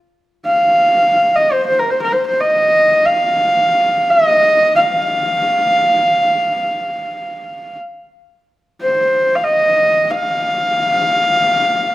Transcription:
0.46 F5
1.36 D#5
1.52 C5
1.67 C5
1.79 A#4
1.90 C5
2.02 A#4
2.12 C5
2.27 C5
2.40 D#5
3.06 F5
4.11 D#5
4.76 F5
8.82 C5
9.36 F5
9.44 D#5
10.11 F5

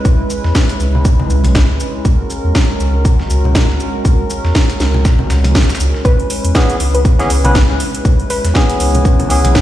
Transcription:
Already playing: G#3 C#4 E4 B4
0.05 C#2, kick, shaker
0.30 shaker
0.44 E2, snare
0.55 kick, snare, shaker
0.69 closed hi-hat
0.80 C#2, shaker
0.95 low conga
1.05 kick, shaker
1.20 high conga, low conga
1.30 C#2, shaker
1.44 B1, closed hi-hat, high conga, low conga
1.55 kick, snare, shaker
1.69 C#2
1.80 shaker
2.05 C#2 F#4 A#4, kick, shaker
2.30 shaker
2.45 E2
2.55 kick, snare, shaker
2.80 C#2, shaker
3.05 kick, shaker
3.20 snare, high conga
3.30 C#2, shaker
3.44 C#2, high conga, low conga
3.55 kick, snare, shaker
3.70 C#2, snare
3.80 shaker
4.05 C#2, kick, shaker
4.30 shaker
4.45 E2, snare
4.55 kick, snare, shaker
4.70 closed hi-hat
4.80 C#2, snare, shaker
4.94 low conga
5.05 kick, snare, shaker
5.19 high conga, low conga
5.30 C#2, snare, shaker
5.44 closed hi-hat, high conga, low conga
5.55 kick, snare, shaker
5.62 snare, shaker
5.70 snare, shaker
5.75 snare, shaker
5.80 C#2, shaker
5.94 snare
6.05 C#2 G#3 E4 B4, kick, shaker
6.20 closed hi-hat
6.30 open hi-hat, shaker
6.45 E2, closed hi-hat
6.54 E3 B3 C#4 G#4, kick, snare, shaker
6.70 closed hi-hat
6.80 C#2, open hi-hat, shaker
6.95 B4, closed hi-hat
7.05 kick, shaker
7.19 E3 B3 C#4 G#4, snare, closed hi-hat, high conga
7.30 C#2, open hi-hat, shaker
7.44 B1 E3 B3 C#4 B4, closed hi-hat, high conga, low conga
7.55 kick, snare, shaker
7.70 C#2, snare
7.80 open hi-hat, shaker
7.95 closed hi-hat
8.05 C#2, kick, shaker
8.20 closed hi-hat
8.30 B4, open hi-hat, shaker
8.45 E2, snare, closed hi-hat
8.54 E3 B3 C#4 G#4, kick, snare, shaker
8.70 closed hi-hat
8.80 C#2, open hi-hat, shaker
8.95 closed hi-hat, low conga
9.05 kick, shaker
9.19 closed hi-hat, high conga, low conga
9.29 C#2 E3 B3 C#4 G#4, open hi-hat, shaker
9.45 B1, closed hi-hat, high conga, low conga
9.55 kick, snare, shaker

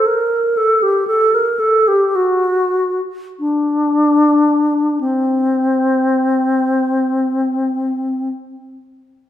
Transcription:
0.06 A#4
0.57 A4
0.83 G4
1.07 A4
1.34 A#4
1.59 A4
1.88 G4
2.15 F#4
3.39 D4
5.01 C4

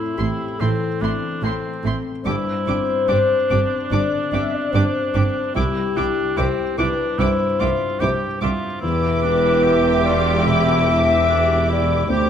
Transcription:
Already playing: A2 C4 E4 A4
0.17 A1 A2 A3 C4 E4 G4 C6
0.59 A1 A2 E3 A3 C4 E4 A4 C6
1.00 A1 A2 A3 C4 D4 E4 C6
1.42 A1 A2 A3 C4 E4 A4 C6
1.83 A1 A2 A3 C4 E4 C6
2.24 G1 G2 D4 E4 G4 C5 D6
2.66 G1 G2 C4 D4 G4 D6
3.08 G1 G2 D4 G4 C5 D6
3.50 G1 G2 C4 D4 G4 D6
3.91 G1 G2 D3 D4 G4 D5 D6
4.32 G1 G2 C4 D4 G4 E5 D6
4.54 D5
4.72 G1 G2 D4 G4 C5 D6
5.14 G1 G2 C4 D4 G4 D6
5.54 C2 E4 G4 D6
5.96 C2 D4 E4 G4 D6
6.37 C2 C4 E4 G4 C5 D6
6.78 C2 D4 E4 G4 B4 D6
7.19 C2 G2 E4 G4 C5 D6
7.59 C2 F4 G4 E5 D6
8.00 C2 E4 G4 C5 D6
8.41 C2 F4 G4 E5 D6
8.81 E1 E2 E4 G4 B4 E5 D6
9.23 D4
9.64 G4
10.04 F4 D5 E5
10.46 B2 E4 E5
10.88 E4
11.29 D4 G4
11.69 E4 D5
12.08 D2 C4 G4 C5 D6

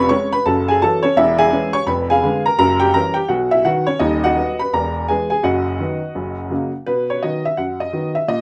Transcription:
Already playing: F1 F2 B4 C#5 B5 C#6
0.09 G#3 C#4 C#5 C#6
0.33 B4 B5
0.46 F#1 F#2 A4 A5
0.68 G#4 G#5
0.82 E3 F#3 C#4 A4 A5
1.03 C#4 C#5
1.17 E1 E2 E4 E5
1.38 G#4 E5 G#5
1.51 E3 G#3 C#4
1.73 C#5 C#6
1.86 F1 F2 B4 B5
2.10 G#4 F5 G#5
2.23 D3 G#3 B3
2.46 A#4 A#5
2.59 F#1 F#2 A#4 A#5
2.80 G4 G5
2.94 E3 G3 C#4 A#4 A#5
3.14 G4 G5
3.29 B1 B2 F#4 F#5
3.51 E4 E5
3.65 D#3 F#3 B3 F#4 F#5
3.87 C#4 C#5
3.99 D#1 D#2 D#4 D#5
4.24 F#4 D#5 F#5
4.36 F#3 B3
4.59 B4 B5
4.73 E1 E2 A#4 A#5
5.08 E3 G#3 B3 G#4 G#5
5.30 G#4 G#5
5.43 F#1 F#2 F#4 D#5 F#5
5.79 D#3 F#3 B3
6.15 F#1 F#2
6.50 C#3 F#3 A#3
6.87 B2 B4
7.10 C#5
7.23 D#3 F#3 B3 D#5
7.45 E5
7.57 F#2 F#5
7.80 D#5
7.93 D#3 F#3 B3
8.15 E5
8.28 A#2 D#5

